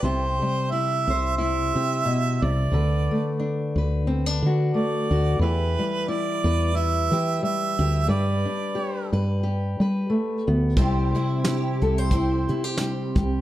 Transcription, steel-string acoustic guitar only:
Already playing: G3
0.04 C3 G4
0.42 G3
0.72 E4
1.10 C5
1.38 E4
1.76 G4
2.05 B2
2.44 C3
2.73 D3 B4
3.11 A3
3.40 D4
3.78 B4
4.07 C4
4.26 D4
4.46 F#4
4.74 A3
5.12 F#4
5.41 E3 G4
5.79 G3
6.08 E4
6.45 B4
6.75 E4
7.13 G4
7.43 G3
7.80 G4
8.08 G3 B4
8.45 D4
8.75 G4
9.13 B4
9.43 G4
9.81 B4
10.10 A3
10.47 B3
10.78 C3 G3 E4 G4 C5
11.15 G3
11.46 E4
11.82 A4
11.98 C5
12.14 E4
12.50 E4
12.64 G4
12.80 G3
13.18 G4

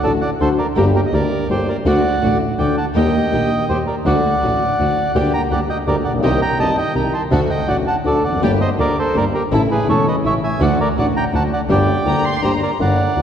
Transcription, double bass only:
0.04 A1
0.40 D2
0.77 G1
1.13 D2
1.50 G1
1.86 D2
2.22 A1
2.59 D2
2.95 D#2
3.31 A#1
3.69 D#2
4.06 D2
4.42 A1
4.79 D2
5.15 D2
5.51 D2
5.87 D2
6.04 A#1
6.23 C2
6.59 G1
6.95 C2
7.31 D2
7.68 A1
8.05 D2
8.23 F1
8.41 G1
8.79 D2
9.15 G1
9.52 A1
9.88 E1
10.25 A1
10.60 D2
10.97 A1
11.33 D2
11.69 G1
12.05 D2
12.43 G1
12.80 G1
13.16 D2

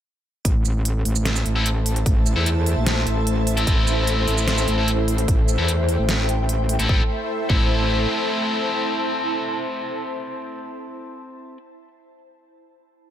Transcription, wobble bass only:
0.45 A1
0.65 A1
1.05 A1
1.46 A1
2.06 A1
2.36 E2
2.77 A#1
3.07 A1
3.67 A1
3.87 A1
4.27 A1
4.68 A1
5.28 A1
5.59 E2
5.99 A1
6.79 A1
6.89 A1
7.50 A1

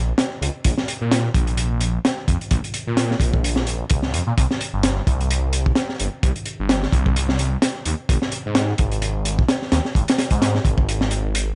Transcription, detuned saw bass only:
Already playing: A#1
0.41 C#2
0.65 A#1
1.01 A#2
1.35 A#1
2.28 F2
2.52 A#1
2.87 A#2
3.20 A#1
3.91 C#2
4.14 F2
4.27 A#2
4.38 C2
4.73 G1
5.07 C2
6.00 G1
6.23 C2
6.60 G1
6.92 C2
7.86 D#2
8.09 G#1
8.46 G#2
8.79 G#1
9.72 D#2
9.95 G#1
10.31 G#2
10.65 G#1
11.24 G#1

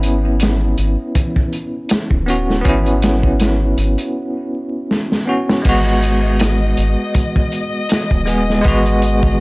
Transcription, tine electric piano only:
Already playing: B3 C#4 E4
2.26 B3 C#4 F#4
2.61 B3 C#4
2.68 E4
5.25 B3 C#4 F#4
5.62 G#3 B3
5.69 F#4
8.26 G#3 B3 G#4
8.61 G#3 B3
8.68 F#4

